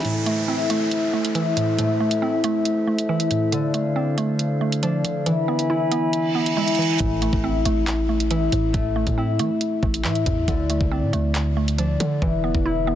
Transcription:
Already playing: harp D4 E4
0.04 synth pluck A2, harp A3, glass harmonica A3 A4 C5 E5, closed hi-hat, downlifter
0.26 synth pluck A3, closed hi-hat
0.48 synth pluck C4, harp E4
0.70 synth pluck A3, closed hi-hat
0.91 closed hi-hat
1.13 synth pluck A3
1.25 closed hi-hat
1.35 synth pluck E3, harp E4, closed hi-hat
1.57 synth pluck A2, closed hi-hat
1.77 synth pluck A2, harp A3, closed hi-hat
2.00 synth pluck A3
2.11 closed hi-hat
2.22 synth pluck C4, harp E4
2.44 synth pluck A3, closed hi-hat
2.65 closed hi-hat
2.87 synth pluck A3
2.99 closed hi-hat
3.09 synth pluck E3, harp E4
3.20 closed hi-hat
3.31 synth pluck A2, closed hi-hat
3.52 synth pluck D3, harp D3, glass harmonica D4 F5, closed hi-hat
3.74 synth pluck A3, closed hi-hat
3.96 synth pluck C4, harp D4
4.18 synth pluck A3, closed hi-hat
4.39 closed hi-hat
4.61 synth pluck A3
4.72 closed hi-hat
4.82 synth pluck F3, harp D4, closed hi-hat
5.05 synth pluck D3, closed hi-hat
5.26 synth pluck E3, harp E3, glass harmonica E4 E5 G#5 B5, closed hi-hat
5.48 synth pluck B3
5.59 closed hi-hat
5.70 harp E4, synth pluck E4
5.91 synth pluck B3, closed hi-hat
6.13 closed hi-hat, reverse cymbal
6.35 synth pluck B3
6.46 closed hi-hat
6.57 synth pluck G#3, harp E4
6.68 closed hi-hat
6.75 synth pluck E3, closed hi-hat
6.82 closed hi-hat
7.00 808-style bass A1, synth pluck A2, harp A3, kick, closed hi-hat, impact
7.22 synth pluck A3, closed hi-hat
7.33 808-style bass A1, kick
7.44 synth pluck C4, harp E4
7.65 808-style bass A1, synth pluck A3, closed hi-hat
7.87 clap, closed hi-hat
8.09 synth pluck A3
8.20 closed hi-hat
8.30 synth pluck E3, harp E4, closed hi-hat
8.52 808-style bass A1, synth pluck A2, closed hi-hat
8.73 808-style bass A1, synth pluck A2, harp A3, kick, closed hi-hat
8.96 synth pluck A3
9.07 808-style bass A2, kick, closed hi-hat
9.18 synth pluck C4, harp E4
9.39 808-style bass E3, synth pluck A3, closed hi-hat
9.61 closed hi-hat
9.83 808-style bass A1, synth pluck A3, kick
9.94 closed hi-hat
10.04 808-style bass A2, synth pluck E3, harp E4, clap
10.15 closed hi-hat
10.26 808-style bass E2, synth pluck A2, kick, closed hi-hat
10.48 808-style bass D2, synth pluck D3, harp D3, kick, closed hi-hat
10.70 synth pluck A3, closed hi-hat
10.81 808-style bass C2, kick
10.91 synth pluck C4, harp D4
11.02 808-style bass A2
11.13 808-style bass D2, synth pluck A3, closed hi-hat
11.35 clap, closed hi-hat
11.57 synth pluck A3
11.68 closed hi-hat
11.78 synth pluck F3, harp D4, closed hi-hat
12.00 808-style bass D3, synth pluck D3, closed hi-hat
12.22 808-style bass E1, synth pluck E3, harp E3, kick
12.44 synth pluck B3
12.55 808-style bass E1, kick
12.65 harp E4, synth pluck E4
12.87 synth pluck B3

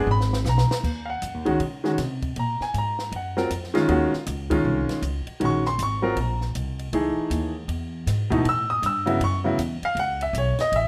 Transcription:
0.07 upright bass G#1
0.11 grand piano B5
0.21 snare
0.33 snare
0.45 upright bass B1, snare, hi-hat pedal
0.49 grand piano A#5
0.58 snare
0.71 snare
0.83 upright bass D#2, kick, crash
1.05 grand piano F5
1.10 grand piano F#5
1.22 upright bass F#2, hi-hat pedal, ride
1.34 upright bass D#2
1.45 upright bass C#2, grand piano D#3 G#3 C#4 F#4, ride
1.60 upright bass C#3, ride
1.84 grand piano D#3 G#3 C#4 F#4, snare
1.98 upright bass C3, snare, hi-hat pedal, ride
2.22 kick, ride
2.36 upright bass A#2, grand piano A#5, ride
2.60 grand piano G#5, muted upright bass stroke, snare
2.74 upright bass G#2, hi-hat pedal, ride
2.78 grand piano A#5
2.99 snare
3.12 upright bass F#2, ride
3.16 grand piano F#5
3.37 grand piano F#3 C4 F4 A#4, snare
3.50 upright bass F2, hi-hat pedal, ride
3.64 snare
3.74 grand piano D#3 G#3 C#4 F4, snare, ride
3.88 upright bass D#2, grand piano D#3 G#3 C#4 F#4, ride
4.13 muted upright bass stroke, snare
4.26 upright bass C#2, hi-hat pedal, ride
4.50 grand piano D#3 G#3 C#4 F4, kick, ride
4.65 upright bass C2
4.89 muted upright bass stroke, snare, ride
5.02 upright bass C#2, hi-hat pedal, ride
5.27 muted upright bass stroke, ride
5.40 upright bass A#1, grand piano D#3 G#3 C#4 F#4, ride
5.45 grand piano C#6
5.65 grand piano C6, snare
5.78 upright bass G#1, hi-hat pedal, ride
5.83 grand piano C#6
6.02 grand piano F#3 C4 F4 A#4
6.16 upright bass A#1, ride
6.21 grand piano A#5
6.41 snare
6.55 upright bass C2, hi-hat pedal, ride
6.79 ride
6.93 upright bass C#2, grand piano E3 A3 D#4 G#4, ride
7.17 muted upright bass stroke
7.30 upright bass D#2, hi-hat pedal, ride
7.68 upright bass E2, ride
8.07 upright bass G#2, snare, hi-hat pedal, ride
8.30 grand piano B2 E3 A3 D#4, kick, ride
8.45 upright bass A2, ride
8.49 grand piano E6
8.70 grand piano D#6
8.82 upright bass G2, grand piano E6, hi-hat pedal, ride
9.06 grand piano C#3 F#3 B3 E4, ride
9.20 upright bass F#2, grand piano C#6, ride
9.44 grand piano C#3 F#3 B3 E4
9.58 upright bass E2, hi-hat pedal, ride
9.82 grand piano F5, muted upright bass stroke, ride
9.95 upright bass C#2, ride
9.99 grand piano F#5
10.21 grand piano E5, ride
10.33 upright bass B1, hi-hat pedal, ride
10.38 grand piano C#5
10.59 grand piano D#5, snare, ride
10.72 upright bass A1, ride
10.76 grand piano E5

